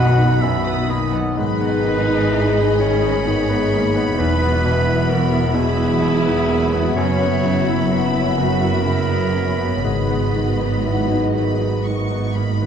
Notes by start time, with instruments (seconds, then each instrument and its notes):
Already playing: double bass section B1, grand piano B1 F#2 B3 D#4 E4, cello section B2, harp B2 F#3 B3 F#4 F#5, french horn section D#3 F#4, viola section B3, violin section F#4 D#5 B5, clarinet D#5, oboe F#5
0.17 grand piano D#4, violin section F#5
0.42 grand piano F#2, oboe E5, violin section B5
0.65 grand piano B3, violin section D#6
0.89 grand piano A#3, harp D#4, oboe D#5, violin section B5
1.13 harp F#3, grand piano B3, violin section F#5
1.36 double bass section G#1, cello section G#2, grand piano G#2, harp G#2, viola section D#4, violin section G#4 D#5 B5, french horn section G#4, clarinet B4
1.61 harp D#3, grand piano B3
1.85 grand piano D#3, harp B3
2.08 grand piano D#4, harp D#4
2.32 grand piano E4, harp G#4
2.55 grand piano D#4
2.79 grand piano D#3, viola section C#4, clarinet C#5
3.02 grand piano D#4
3.26 grand piano D#3, viola section B3
3.49 grand piano B3
3.72 viola section A#3, grand piano A#3, harp D#4
3.96 harp D#3, grand piano B3
4.17 double bass section E1, cello section E2, harp E2, grand piano E2, french horn section F#3 B3, viola section B3, violin section F#4 E5, clarinet B4
4.41 harp B2, grand piano B3
4.64 grand piano B2, harp B3
4.86 harp E4, grand piano E4
5.09 harp F#4, grand piano F#4, clarinet A#4
5.32 grand piano E4
5.54 grand piano B2, viola section E4, clarinet G#4, harp E5
5.77 grand piano E4
6.00 grand piano B2, harp E5
6.25 grand piano B3
6.48 grand piano A#3, harp E4
6.73 harp B2, grand piano B3
6.96 double bass section F#1, grand piano F#2, cello section F#2, harp F#2, viola section C#4, clarinet C#5, violin section B5
7.21 harp C#3, grand piano B3
7.45 grand piano C#3, harp B3, viola section E4
7.67 grand piano E4, harp E4
7.91 viola section E4, grand piano F#4, harp F#4
8.15 grand piano E4, harp C#5
8.37 grand piano C#3, viola section F#4, clarinet A#4, harp E5
8.62 grand piano E4
8.85 grand piano C#3, viola section E4, harp E5
9.10 grand piano B3
9.34 grand piano A#3, viola section C#4, harp E4
9.58 harp C#3, grand piano B3
9.83 double bass section G#1, harp G#2, cello section G#2, grand piano G#2, french horn section F#3 B4, viola section B3, violin section F#4 D#5, clarinet G#4
10.09 harp D#3, grand piano B3
10.34 grand piano D#3, harp B3
10.59 harp D#4, grand piano D#4
10.85 grand piano E4, harp F#4
11.10 grand piano D#4, harp G#4
11.34 grand piano D#3, harp D#5, violin section B5
11.61 grand piano D#4
11.85 grand piano D#3, harp D#5, violin section C#6
12.11 grand piano B3
12.35 grand piano A#3, harp D#4, violin section B5
12.61 harp D#3, grand piano B3